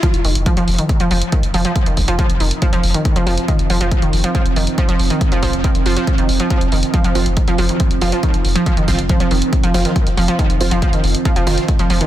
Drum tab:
HH |xxoxxxoxxxoxxxox|xxoxxxoxxxoxxxox|xxoxxxoxxxoxxxox|xxoxxxoxxxoxxxox|
BD |o---o---o---o---|o-o-o---o---o---|o---o---o---o---|o-o-o---o---o---|

HH |xxoxxxoxxxoxxxox|xxoxxxoxxxoxxxox|xxoxxxoxxxoxxxox|
BD |o---o---o---o---|o-o-o---o---o---|o---o---o---o---|